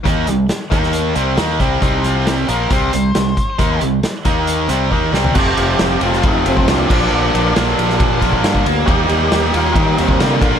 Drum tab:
CC |----------------|----------------|----------------|x-------------x-|
RD |----------------|----------------|----------------|--x-x-x-x-x-x---|
HH |x-x-x-x-x-x-x-x-|x-x-x-x-x-x-x-x-|x-x-x-x-x-x-----|----------------|
SD |----o--o----o---|----o-------o---|----o---------o-|----o--o----o---|
FT |----------------|----------------|---------------o|----------------|
BD |o-----o-------o-|o-------o-----o-|o-----o-----o---|o-------o--o--o-|

CC |----------------|----------------|
RD |--x-x-x-x-x-x-x-|x-x-x-x-x-x-x-x-|
HH |----------------|----------------|
SD |----o--o----o---|----o-------o---|
FT |----------------|----------------|
BD |--------o-oo-o--|o-------o--o--o-|